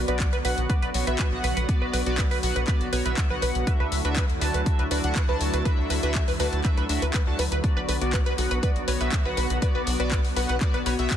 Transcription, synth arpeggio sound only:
0, 0, Header, 1, 2, 480
1, 0, Start_track
1, 0, Key_signature, 2, "minor"
1, 0, Tempo, 495868
1, 1633, Time_signature, 4, 2, 24, 8
1, 10812, End_track
2, 0, Start_track
2, 0, Title_t, "Synth arpeggio sound"
2, 0, Program_c, 0, 84
2, 77, Note_on_c, 0, 71, 77
2, 147, Note_off_c, 0, 71, 0
2, 317, Note_on_c, 0, 71, 82
2, 359, Note_off_c, 0, 71, 0
2, 433, Note_on_c, 0, 71, 74
2, 508, Note_off_c, 0, 71, 0
2, 673, Note_on_c, 0, 71, 78
2, 718, Note_off_c, 0, 71, 0
2, 798, Note_on_c, 0, 71, 79
2, 867, Note_off_c, 0, 71, 0
2, 1038, Note_on_c, 0, 71, 77
2, 1079, Note_off_c, 0, 71, 0
2, 1153, Note_on_c, 0, 71, 85
2, 1228, Note_off_c, 0, 71, 0
2, 1393, Note_on_c, 0, 71, 82
2, 1438, Note_off_c, 0, 71, 0
2, 1518, Note_on_c, 0, 71, 76
2, 1587, Note_off_c, 0, 71, 0
2, 1758, Note_on_c, 0, 71, 79
2, 1799, Note_off_c, 0, 71, 0
2, 1873, Note_on_c, 0, 71, 76
2, 1948, Note_off_c, 0, 71, 0
2, 2113, Note_on_c, 0, 71, 85
2, 2158, Note_off_c, 0, 71, 0
2, 2237, Note_on_c, 0, 71, 84
2, 2307, Note_off_c, 0, 71, 0
2, 2477, Note_on_c, 0, 71, 80
2, 2519, Note_off_c, 0, 71, 0
2, 2593, Note_on_c, 0, 71, 82
2, 2668, Note_off_c, 0, 71, 0
2, 2833, Note_on_c, 0, 71, 78
2, 2878, Note_off_c, 0, 71, 0
2, 2958, Note_on_c, 0, 71, 76
2, 3027, Note_off_c, 0, 71, 0
2, 3198, Note_on_c, 0, 71, 78
2, 3239, Note_off_c, 0, 71, 0
2, 3313, Note_on_c, 0, 71, 84
2, 3388, Note_off_c, 0, 71, 0
2, 3553, Note_on_c, 0, 71, 85
2, 3598, Note_off_c, 0, 71, 0
2, 3679, Note_on_c, 0, 71, 81
2, 3748, Note_off_c, 0, 71, 0
2, 3918, Note_on_c, 0, 71, 78
2, 3960, Note_off_c, 0, 71, 0
2, 4033, Note_on_c, 0, 71, 84
2, 4108, Note_off_c, 0, 71, 0
2, 4274, Note_on_c, 0, 71, 77
2, 4318, Note_off_c, 0, 71, 0
2, 4398, Note_on_c, 0, 71, 78
2, 4467, Note_off_c, 0, 71, 0
2, 4638, Note_on_c, 0, 71, 79
2, 4679, Note_off_c, 0, 71, 0
2, 4753, Note_on_c, 0, 71, 75
2, 4828, Note_off_c, 0, 71, 0
2, 4994, Note_on_c, 0, 71, 85
2, 5038, Note_off_c, 0, 71, 0
2, 5118, Note_on_c, 0, 71, 80
2, 5187, Note_off_c, 0, 71, 0
2, 5358, Note_on_c, 0, 71, 76
2, 5400, Note_off_c, 0, 71, 0
2, 5473, Note_on_c, 0, 71, 86
2, 5548, Note_off_c, 0, 71, 0
2, 5713, Note_on_c, 0, 71, 77
2, 5758, Note_off_c, 0, 71, 0
2, 5838, Note_on_c, 0, 71, 78
2, 5907, Note_off_c, 0, 71, 0
2, 6078, Note_on_c, 0, 71, 79
2, 6119, Note_off_c, 0, 71, 0
2, 6193, Note_on_c, 0, 71, 78
2, 6268, Note_off_c, 0, 71, 0
2, 6433, Note_on_c, 0, 71, 79
2, 6478, Note_off_c, 0, 71, 0
2, 6558, Note_on_c, 0, 71, 79
2, 6627, Note_off_c, 0, 71, 0
2, 6798, Note_on_c, 0, 71, 78
2, 6839, Note_off_c, 0, 71, 0
2, 6913, Note_on_c, 0, 71, 80
2, 6988, Note_off_c, 0, 71, 0
2, 7153, Note_on_c, 0, 71, 79
2, 7198, Note_off_c, 0, 71, 0
2, 7278, Note_on_c, 0, 71, 75
2, 7347, Note_off_c, 0, 71, 0
2, 7518, Note_on_c, 0, 71, 78
2, 7559, Note_off_c, 0, 71, 0
2, 7633, Note_on_c, 0, 71, 78
2, 7708, Note_off_c, 0, 71, 0
2, 7873, Note_on_c, 0, 71, 87
2, 7918, Note_off_c, 0, 71, 0
2, 7997, Note_on_c, 0, 71, 81
2, 8067, Note_off_c, 0, 71, 0
2, 8237, Note_on_c, 0, 71, 77
2, 8279, Note_off_c, 0, 71, 0
2, 8353, Note_on_c, 0, 71, 79
2, 8428, Note_off_c, 0, 71, 0
2, 8593, Note_on_c, 0, 71, 76
2, 8638, Note_off_c, 0, 71, 0
2, 8718, Note_on_c, 0, 71, 77
2, 8787, Note_off_c, 0, 71, 0
2, 8958, Note_on_c, 0, 71, 78
2, 8999, Note_off_c, 0, 71, 0
2, 9073, Note_on_c, 0, 71, 82
2, 9148, Note_off_c, 0, 71, 0
2, 9312, Note_on_c, 0, 71, 83
2, 9358, Note_off_c, 0, 71, 0
2, 9437, Note_on_c, 0, 71, 80
2, 9507, Note_off_c, 0, 71, 0
2, 9677, Note_on_c, 0, 71, 80
2, 9719, Note_off_c, 0, 71, 0
2, 9793, Note_on_c, 0, 71, 82
2, 9868, Note_off_c, 0, 71, 0
2, 10033, Note_on_c, 0, 71, 78
2, 10078, Note_off_c, 0, 71, 0
2, 10157, Note_on_c, 0, 71, 78
2, 10227, Note_off_c, 0, 71, 0
2, 10397, Note_on_c, 0, 71, 81
2, 10439, Note_off_c, 0, 71, 0
2, 10513, Note_on_c, 0, 71, 76
2, 10588, Note_off_c, 0, 71, 0
2, 10753, Note_on_c, 0, 71, 84
2, 10798, Note_off_c, 0, 71, 0
2, 10812, End_track
0, 0, End_of_file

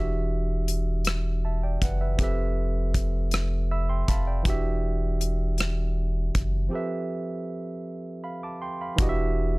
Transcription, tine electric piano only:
0, 0, Header, 1, 2, 480
1, 0, Start_track
1, 0, Tempo, 754717
1, 1392, Time_signature, 6, 3, 24, 8
1, 6097, End_track
2, 0, Start_track
2, 0, Title_t, "Tine electric piano"
2, 0, Program_c, 0, 4
2, 0, Note_on_c, 0, 52, 57
2, 0, Note_on_c, 0, 62, 58
2, 0, Note_on_c, 0, 66, 57
2, 0, Note_on_c, 0, 67, 52
2, 0, Note_on_c, 0, 76, 70
2, 54, Control_c, 0, 64, 127
2, 908, Note_off_c, 0, 76, 0
2, 921, Note_on_c, 0, 81, 49
2, 924, Note_on_c, 0, 76, 41
2, 1031, Note_off_c, 0, 81, 0
2, 1033, Note_off_c, 0, 76, 0
2, 1039, Note_on_c, 0, 79, 51
2, 1043, Note_on_c, 0, 74, 47
2, 1150, Note_off_c, 0, 79, 0
2, 1152, Note_off_c, 0, 74, 0
2, 1161, Note_on_c, 0, 78, 59
2, 1165, Note_on_c, 0, 71, 51
2, 1271, Note_off_c, 0, 78, 0
2, 1273, Note_off_c, 0, 71, 0
2, 1278, Note_on_c, 0, 76, 51
2, 1282, Note_on_c, 0, 71, 43
2, 1361, Note_off_c, 0, 52, 0
2, 1367, Note_off_c, 0, 62, 0
2, 1370, Note_off_c, 0, 66, 0
2, 1376, Note_off_c, 0, 67, 0
2, 1379, Note_on_c, 0, 53, 61
2, 1388, Note_on_c, 0, 60, 63
2, 1397, Note_on_c, 0, 67, 60
2, 1401, Control_c, 0, 64, 0
2, 1404, Note_off_c, 0, 71, 0
2, 1405, Note_on_c, 0, 69, 56
2, 1412, Note_on_c, 0, 71, 54
2, 1415, Note_off_c, 0, 76, 0
2, 1422, Note_on_c, 0, 76, 67
2, 1526, Control_c, 0, 64, 127
2, 2348, Note_off_c, 0, 76, 0
2, 2362, Note_on_c, 0, 76, 61
2, 2362, Note_on_c, 0, 88, 56
2, 2363, Note_on_c, 0, 83, 44
2, 2472, Note_off_c, 0, 83, 0
2, 2472, Note_off_c, 0, 88, 0
2, 2477, Note_on_c, 0, 84, 60
2, 2481, Note_on_c, 0, 79, 46
2, 2581, Note_off_c, 0, 76, 0
2, 2589, Note_off_c, 0, 84, 0
2, 2591, Note_off_c, 0, 79, 0
2, 2595, Note_on_c, 0, 81, 61
2, 2595, Note_on_c, 0, 83, 63
2, 2600, Note_on_c, 0, 77, 53
2, 2708, Note_off_c, 0, 83, 0
2, 2711, Note_off_c, 0, 77, 0
2, 2718, Note_on_c, 0, 74, 45
2, 2718, Note_on_c, 0, 79, 48
2, 2800, Note_off_c, 0, 53, 0
2, 2804, Note_off_c, 0, 60, 0
2, 2809, Note_off_c, 0, 67, 0
2, 2813, Note_off_c, 0, 69, 0
2, 2817, Note_off_c, 0, 71, 0
2, 2817, Note_off_c, 0, 81, 0
2, 2818, Note_on_c, 0, 52, 68
2, 2830, Note_on_c, 0, 62, 62
2, 2840, Control_c, 0, 64, 0
2, 2840, Note_on_c, 0, 66, 57
2, 2849, Note_on_c, 0, 67, 61
2, 2860, Note_on_c, 0, 76, 78
2, 2939, Control_c, 0, 64, 127
2, 2943, Note_off_c, 0, 74, 0
2, 2943, Note_off_c, 0, 79, 0
2, 4239, Note_off_c, 0, 52, 0
2, 4246, Note_off_c, 0, 62, 0
2, 4251, Note_off_c, 0, 66, 0
2, 4253, Note_on_c, 0, 53, 62
2, 4255, Note_off_c, 0, 67, 0
2, 4261, Note_off_c, 0, 76, 0
2, 4261, Note_on_c, 0, 60, 57
2, 4269, Note_on_c, 0, 67, 57
2, 4280, Control_c, 0, 64, 0
2, 4280, Note_on_c, 0, 69, 58
2, 4289, Note_on_c, 0, 71, 57
2, 4296, Note_on_c, 0, 76, 71
2, 4384, Control_c, 0, 64, 127
2, 5225, Note_off_c, 0, 76, 0
2, 5239, Note_on_c, 0, 83, 53
2, 5242, Note_on_c, 0, 77, 44
2, 5350, Note_off_c, 0, 83, 0
2, 5351, Note_off_c, 0, 77, 0
2, 5363, Note_on_c, 0, 86, 50
2, 5367, Note_on_c, 0, 81, 47
2, 5472, Note_off_c, 0, 86, 0
2, 5474, Note_off_c, 0, 81, 0
2, 5480, Note_on_c, 0, 84, 61
2, 5484, Note_on_c, 0, 79, 51
2, 5591, Note_off_c, 0, 84, 0
2, 5592, Note_off_c, 0, 79, 0
2, 5605, Note_on_c, 0, 83, 50
2, 5606, Note_on_c, 0, 77, 40
2, 5677, Note_off_c, 0, 53, 0
2, 5681, Note_off_c, 0, 60, 0
2, 5685, Note_off_c, 0, 67, 0
2, 5691, Note_off_c, 0, 69, 0
2, 5695, Note_off_c, 0, 71, 0
2, 5698, Note_on_c, 0, 52, 72
2, 5709, Note_on_c, 0, 62, 68
2, 5721, Control_c, 0, 64, 0
2, 5721, Note_on_c, 0, 66, 73
2, 5732, Note_on_c, 0, 67, 67
2, 5740, Note_on_c, 0, 75, 73
2, 5767, Note_off_c, 0, 75, 0
2, 5781, Note_on_c, 0, 76, 86
2, 5827, Note_off_c, 0, 83, 0
2, 5828, Note_off_c, 0, 77, 0
2, 5849, Control_c, 0, 64, 127
2, 6097, Note_off_c, 0, 52, 0
2, 6097, Note_off_c, 0, 62, 0
2, 6097, Note_off_c, 0, 66, 0
2, 6097, Note_off_c, 0, 67, 0
2, 6097, Note_off_c, 0, 76, 0
2, 6097, End_track
0, 0, End_of_file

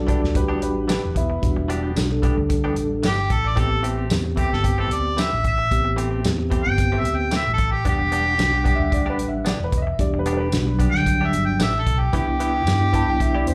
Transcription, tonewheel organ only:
0, 0, Header, 1, 2, 480
1, 0, Start_track
1, 0, Key_signature, 1, "minor"
1, 0, Tempo, 535236
1, 1278, Time_signature, 4, 2, 24, 8
1, 12144, End_track
2, 0, Start_track
2, 0, Title_t, "Tonewheel organ"
2, 0, Program_c, 0, 16
2, 0, Note_on_c, 0, 55, 81
2, 0, Note_on_c, 0, 62, 72
2, 0, Note_on_c, 0, 66, 93
2, 842, Note_off_c, 0, 55, 0
2, 843, Note_off_c, 0, 62, 0
2, 844, Note_off_c, 0, 66, 0
2, 1271, Note_on_c, 0, 55, 75
2, 1273, Note_on_c, 0, 62, 70
2, 1278, Note_on_c, 0, 66, 78
2, 1721, Note_off_c, 0, 55, 0
2, 1722, Note_off_c, 0, 62, 0
2, 1724, Note_off_c, 0, 66, 0
2, 1749, Note_on_c, 0, 55, 84
2, 1756, Note_on_c, 0, 62, 76
2, 1758, Note_on_c, 0, 66, 96
2, 1875, Note_off_c, 0, 55, 0
2, 1878, Note_off_c, 0, 62, 0
2, 1879, Note_off_c, 0, 66, 0
2, 1892, Note_on_c, 0, 55, 77
2, 1896, Note_on_c, 0, 62, 72
2, 1899, Note_on_c, 0, 69, 92
2, 2769, Note_off_c, 0, 55, 0
2, 2770, Note_off_c, 0, 62, 0
2, 2772, Note_off_c, 0, 69, 0
2, 3201, Note_on_c, 0, 59, 58
2, 3205, Note_on_c, 0, 60, 59
2, 3211, Note_on_c, 0, 67, 73
2, 3646, Note_off_c, 0, 59, 0
2, 3649, Note_off_c, 0, 60, 0
2, 3651, Note_off_c, 0, 67, 0
2, 3684, Note_on_c, 0, 59, 84
2, 3685, Note_on_c, 0, 60, 76
2, 3690, Note_on_c, 0, 67, 94
2, 3802, Note_off_c, 0, 59, 0
2, 3804, Note_off_c, 0, 60, 0
2, 3806, Note_off_c, 0, 67, 0
2, 3813, Note_on_c, 0, 59, 70
2, 3815, Note_on_c, 0, 60, 65
2, 3819, Note_on_c, 0, 67, 73
2, 4689, Note_off_c, 0, 59, 0
2, 4690, Note_off_c, 0, 60, 0
2, 4692, Note_off_c, 0, 67, 0
2, 5122, Note_on_c, 0, 59, 60
2, 5125, Note_on_c, 0, 60, 58
2, 5129, Note_on_c, 0, 67, 74
2, 5567, Note_off_c, 0, 59, 0
2, 5569, Note_off_c, 0, 60, 0
2, 5570, Note_off_c, 0, 67, 0
2, 5602, Note_on_c, 0, 59, 83
2, 5607, Note_on_c, 0, 60, 81
2, 5608, Note_on_c, 0, 67, 101
2, 5717, Note_off_c, 0, 59, 0
2, 5723, Note_off_c, 0, 60, 0
2, 5725, Note_off_c, 0, 67, 0
2, 5728, Note_on_c, 0, 59, 79
2, 5734, Note_on_c, 0, 60, 78
2, 5738, Note_on_c, 0, 67, 89
2, 6606, Note_off_c, 0, 59, 0
2, 6609, Note_off_c, 0, 60, 0
2, 6611, Note_off_c, 0, 67, 0
2, 7037, Note_on_c, 0, 55, 62
2, 7041, Note_on_c, 0, 62, 61
2, 7045, Note_on_c, 0, 78, 70
2, 7484, Note_off_c, 0, 55, 0
2, 7486, Note_off_c, 0, 62, 0
2, 7488, Note_off_c, 0, 78, 0
2, 7517, Note_on_c, 0, 55, 70
2, 7520, Note_on_c, 0, 66, 77
2, 7522, Note_on_c, 0, 62, 69
2, 7639, Note_off_c, 0, 55, 0
2, 7640, Note_off_c, 0, 66, 0
2, 7641, Note_off_c, 0, 62, 0
2, 7653, Note_on_c, 0, 55, 83
2, 7656, Note_on_c, 0, 62, 78
2, 7661, Note_on_c, 0, 78, 89
2, 8527, Note_off_c, 0, 55, 0
2, 8529, Note_off_c, 0, 62, 0
2, 8531, Note_off_c, 0, 78, 0
2, 8958, Note_on_c, 0, 55, 77
2, 8960, Note_on_c, 0, 62, 72
2, 8966, Note_on_c, 0, 67, 80
2, 9403, Note_off_c, 0, 55, 0
2, 9404, Note_off_c, 0, 62, 0
2, 9407, Note_off_c, 0, 67, 0
2, 9439, Note_on_c, 0, 55, 80
2, 9443, Note_on_c, 0, 62, 74
2, 9449, Note_on_c, 0, 66, 97
2, 9552, Note_off_c, 0, 55, 0
2, 9557, Note_off_c, 0, 62, 0
2, 9562, Note_on_c, 0, 55, 75
2, 9564, Note_off_c, 0, 66, 0
2, 9567, Note_on_c, 0, 62, 74
2, 9568, Note_on_c, 0, 54, 88
2, 10441, Note_off_c, 0, 55, 0
2, 10443, Note_off_c, 0, 62, 0
2, 10444, Note_off_c, 0, 54, 0
2, 10876, Note_on_c, 0, 59, 63
2, 10877, Note_on_c, 0, 62, 57
2, 10885, Note_on_c, 0, 64, 72
2, 11321, Note_off_c, 0, 59, 0
2, 11322, Note_off_c, 0, 62, 0
2, 11326, Note_off_c, 0, 64, 0
2, 11358, Note_on_c, 0, 59, 71
2, 11366, Note_on_c, 0, 62, 64
2, 11367, Note_on_c, 0, 64, 84
2, 11476, Note_off_c, 0, 64, 0
2, 11477, Note_off_c, 0, 62, 0
2, 11478, Note_off_c, 0, 59, 0
2, 11487, Note_on_c, 0, 64, 87
2, 11488, Note_on_c, 0, 62, 73
2, 11489, Note_on_c, 0, 59, 85
2, 12144, Note_off_c, 0, 59, 0
2, 12144, Note_off_c, 0, 62, 0
2, 12144, Note_off_c, 0, 64, 0
2, 12144, End_track
0, 0, End_of_file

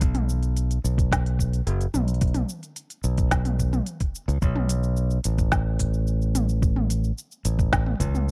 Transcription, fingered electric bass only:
0, 0, Header, 1, 2, 480
1, 0, Start_track
1, 0, Tempo, 550459
1, 17, Time_signature, 4, 2, 24, 8
1, 7246, End_track
2, 0, Start_track
2, 0, Title_t, "Fingered electric bass"
2, 0, Program_c, 0, 33
2, 15, Note_on_c, 0, 35, 106
2, 673, Note_off_c, 0, 35, 0
2, 736, Note_on_c, 0, 35, 88
2, 1393, Note_off_c, 0, 35, 0
2, 1454, Note_on_c, 0, 30, 105
2, 1616, Note_off_c, 0, 30, 0
2, 1694, Note_on_c, 0, 35, 78
2, 2112, Note_off_c, 0, 35, 0
2, 2650, Note_on_c, 0, 35, 89
2, 3310, Note_off_c, 0, 35, 0
2, 3732, Note_on_c, 0, 37, 98
2, 3815, Note_off_c, 0, 37, 0
2, 3854, Note_on_c, 0, 35, 94
2, 4512, Note_off_c, 0, 35, 0
2, 4579, Note_on_c, 0, 33, 92
2, 6195, Note_off_c, 0, 33, 0
2, 6498, Note_on_c, 0, 33, 94
2, 6914, Note_off_c, 0, 33, 0
2, 6974, Note_on_c, 0, 37, 101
2, 7246, Note_off_c, 0, 37, 0
2, 7246, End_track
0, 0, End_of_file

